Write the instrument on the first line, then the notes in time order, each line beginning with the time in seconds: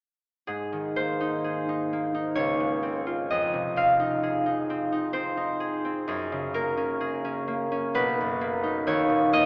harp
0.47 G#2 G#4
0.72 D#3
0.96 A#3 C5
1.21 D#4
1.44 G#4
1.69 D#4
1.93 A#3
2.15 D#4
2.35 C#2 C#5
2.60 G#2
2.83 C4
3.07 F4
3.30 F2 D#5
3.54 C3
3.76 C4 F5
4.00 D#4
4.23 G#4
4.46 D#4
4.70 C4
4.92 D#4
5.13 C4 C5
5.37 D#4
5.60 G#4
5.85 C4
6.08 F#2 G#4
6.32 C#3
6.54 A#3 A#4
6.77 C#4
7.01 G#4
7.25 C#4
7.48 A#3
7.72 C#4
7.94 B1 B4
8.21 F#2
8.41 A#3
8.63 D#4
8.87 D#2 C#5
9.09 A#2
9.33 A#3 D#5